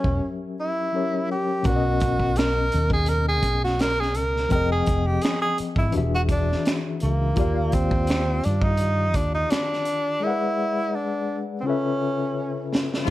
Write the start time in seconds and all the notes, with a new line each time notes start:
Already playing: F#3 C#4 G4 A#4 E5
0.04 E1, kick
0.60 E4
0.93 F#3 C#4 G4 A#4 C#5
1.32 G4
1.63 B1 B2 B3 C#4 F#4, kick, closed hi-hat
1.68 A#4 D5
1.76 D#5
2.00 kick, closed hi-hat
2.20 kick
2.36 A#4, snare, closed hi-hat
2.40 finger snap
2.72 D#2, closed hi-hat
2.90 G#4, kick
3.06 A#4, closed hi-hat
3.28 G#4
3.43 B1, kick, closed hi-hat
3.64 F#4, snare
3.79 A#4, finger snap, snare, closed hi-hat
4.00 G#4, snare
4.14 C#2 A#4, closed hi-hat
4.36 snare
4.49 F1 F3 C4 A#4 G5, kick, closed hi-hat
4.54 G#4 D#5
4.71 G#4
4.86 F1, kick, closed hi-hat
5.07 G4
5.21 G#4, snare, closed hi-hat
5.26 finger snap
5.42 G#4
5.58 muted fretless electric bass stroke, closed hi-hat
5.76 G#1 E4, kick
5.91 E3 D4 F#4, closed hi-hat
5.96 E1 G4 E5
6.14 F#4
6.29 D4, kick, closed hi-hat
6.52 snare
6.65 finger snap, snare, closed hi-hat
7.00 C#2 A#3, closed hi-hat
7.34 D#2 D#3 F4 G4, kick, closed hi-hat
7.39 D5 F5
7.72 C4, kick, closed hi-hat
7.91 kick
8.07 snare, closed hi-hat
8.11 finger snap
8.44 G2 D4, closed hi-hat
8.62 D#4, kick
8.77 closed hi-hat
9.14 D#2 D4, kick, closed hi-hat
9.34 D#4
9.50 D4, finger snap, snare, closed hi-hat
9.73 snare
9.85 closed hi-hat
10.20 G#3 E4 G#4 A#4
10.25 D5 F#5
10.30 B4
10.95 D4
11.60 C#3 C4
11.64 C#4 F4 A4 B4
11.70 E5
12.75 snare
12.94 snare
13.05 F3 D#4, closed hi-hat